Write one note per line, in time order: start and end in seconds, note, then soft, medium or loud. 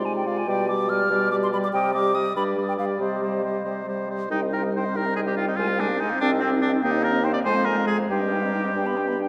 0.00 0.39 C3 soft
0.04 0.26 G#3 soft
0.04 0.25 F4 soft
0.04 0.26 D5 soft
0.04 0.15 G#5 soft
0.16 0.28 G5 medium
0.26 0.47 G#3 soft
0.26 0.47 F4 soft
0.26 0.47 D5 soft
0.26 0.39 F5 medium
0.38 0.50 G#5 medium
0.47 1.03 B2 medium
0.47 0.68 G3 soft
0.47 0.68 G4 soft
0.47 0.68 D5 soft
0.47 0.68 G5 medium
0.69 0.89 G3 soft
0.69 0.90 G4 soft
0.69 0.89 D5 soft
0.69 0.91 D6 medium
0.89 1.10 G3 soft
0.89 1.10 G4 soft
0.89 1.10 D5 soft
0.89 1.31 F6 medium
1.10 1.65 B2 medium
1.10 1.32 G3 soft
1.10 1.31 G4 soft
1.10 1.31 D5 medium
1.31 1.52 G3 soft
1.31 1.51 G4 soft
1.31 1.52 D5 soft
1.31 1.36 D6 medium
1.43 1.48 C6 medium
1.52 1.73 G3 soft
1.52 1.72 G4 medium
1.52 1.72 D5 soft
1.52 1.58 B5 medium
1.64 1.68 D6 medium
1.73 2.28 C3 medium
1.73 1.94 G3 soft
1.73 1.93 G4 medium
1.73 1.93 D#5 medium
1.73 1.93 G5 medium
1.93 2.15 G3 medium
1.93 2.13 G4 soft
1.93 2.14 D#5 soft
1.93 2.16 D6 medium
2.14 2.35 G3 soft
2.14 2.34 G4 soft
2.14 2.35 D#5 soft
2.14 2.35 D#6 medium
2.35 2.92 G2 medium
2.35 2.57 G3 soft
2.35 2.55 G4 medium
2.35 2.57 D5 medium
2.35 2.44 B5 medium
2.56 2.78 G3 soft
2.56 2.77 G4 soft
2.56 2.77 D5 soft
2.69 2.73 G5 medium
2.77 3.00 G3 soft
2.77 2.98 G4 soft
2.77 2.99 D5 soft
2.77 2.85 F5 medium
2.99 3.57 C3 soft
2.99 3.21 G3 soft
2.99 3.20 G4 soft
2.99 3.22 C5 soft
2.99 4.07 D#5 soft
3.21 3.43 G3 soft
3.21 3.43 G4 soft
3.21 3.44 C5 soft
3.44 3.65 G3 soft
3.44 3.65 G4 soft
3.44 3.64 C5 soft
3.64 4.23 C3 soft
3.64 3.86 G3 soft
3.64 3.87 G4 soft
3.64 3.86 C5 soft
3.87 4.08 G3 soft
3.87 4.08 G4 soft
3.87 4.09 C5 soft
4.08 4.29 G3 soft
4.08 4.30 G4 soft
4.08 4.31 C5 soft
4.30 4.87 C2 medium
4.30 6.03 G3 soft
4.30 4.43 D#4 soft
4.30 4.41 D#4 medium
4.30 4.44 G5 soft
4.42 4.53 C4 soft
4.42 4.55 D#5 soft
4.52 4.64 D#4 soft
4.52 4.63 A#4 medium
4.52 4.65 G5 soft
4.62 4.72 C4 soft
4.62 4.74 D#5 soft
4.73 4.86 D#4 soft
4.73 4.98 C5 medium
4.73 4.87 G5 soft
4.84 4.97 C4 soft
4.84 4.97 D#5 soft
4.95 5.51 C2 medium
4.95 5.06 D#4 soft
4.95 5.16 A#4 medium
4.95 5.08 G5 soft
5.05 5.16 C4 soft
5.05 5.16 D#5 soft
5.16 5.28 D#4 soft
5.16 5.21 G#4 medium
5.16 5.29 G5 soft
5.27 5.40 C4 soft
5.27 5.32 G4 soft
5.27 5.40 D#5 soft
5.36 5.50 D#4 soft
5.36 5.47 F4 medium
5.36 5.50 G5 soft
5.48 5.58 C4 soft
5.48 5.58 D#4 medium
5.48 5.57 D#5 soft
5.57 6.05 C2 medium
5.57 5.72 G#3 soft
5.57 5.82 F4 medium
5.57 5.69 G#5 soft
5.68 5.83 C4 soft
5.68 5.80 F5 soft
5.79 5.93 G#3 soft
5.79 6.01 D4 medium
5.79 5.90 G#5 soft
5.89 6.01 C4 soft
5.89 5.99 F5 soft
5.99 6.14 G#3 soft
5.99 6.20 D#4 medium
5.99 6.11 G#5 soft
6.10 6.22 C4 soft
6.10 6.19 F5 soft
6.19 6.76 C2 medium
6.19 6.84 C4 medium
6.19 6.34 C4 medium
6.19 6.30 D4 loud
6.19 6.31 G5 soft
6.29 6.44 D#4 soft
6.29 6.41 D#5 medium
6.40 6.50 C4 medium
6.40 6.55 C4 soft
6.40 6.52 G5 soft
6.50 6.63 D#4 medium
6.50 6.59 D#5 medium
6.60 6.75 C4 medium
6.60 6.71 D4 medium
6.60 6.71 G5 medium
6.70 6.83 D#4 soft
6.70 6.80 D#5 soft
6.81 7.39 D#2 medium
6.81 7.47 A#3 medium
6.81 6.95 D#4 soft
6.81 7.06 D#4 medium
6.81 6.93 G5 medium
6.92 7.05 C4 soft
6.92 7.05 D#5 soft
7.03 7.16 D#4 soft
7.03 7.26 A#4 medium
7.03 7.14 G5 soft
7.12 7.23 C4 medium
7.12 7.22 D#5 soft
7.23 7.36 D#4 soft
7.23 7.33 C5 medium
7.23 7.35 G5 medium
7.33 7.44 C4 soft
7.33 7.39 D5 medium
7.33 7.43 D#5 soft
7.44 8.03 F2 medium
7.44 7.57 G#3 soft
7.44 8.12 G#3 medium
7.44 7.66 C5 loud
7.44 7.57 G#5 soft
7.55 7.68 C4 soft
7.55 7.67 F5 soft
7.65 7.78 G#3 soft
7.65 7.87 A#4 medium
7.65 7.79 G#5 soft
7.76 7.86 C4 soft
7.76 7.88 F5 soft
7.87 8.00 G#3 soft
7.87 7.97 G#4 medium
7.87 8.00 G#5 soft
7.98 8.10 C4 soft
7.98 8.09 F5 soft
8.10 8.68 G2 medium
8.10 9.08 G3 soft
8.10 8.22 D#4 soft
8.10 9.18 G4 medium
8.10 8.22 G5 soft
8.21 8.33 C4 soft
8.21 8.34 D#5 soft
8.32 8.45 D#4 soft
8.32 8.44 G5 soft
8.43 8.54 C4 soft
8.43 8.53 D#5 soft
8.54 8.66 D#4 soft
8.54 8.66 G5 soft
8.64 8.74 C4 soft
8.64 8.76 D#5 soft
8.74 9.28 G2 soft
8.74 8.87 D4 soft
8.74 8.88 G5 soft
8.86 8.99 B3 soft
8.86 8.99 B5 soft
8.97 9.09 D4 soft
8.97 9.10 G5 soft
9.07 9.18 B3 soft
9.07 9.19 B5 soft
9.19 9.28 D4 soft
9.19 9.28 G5 soft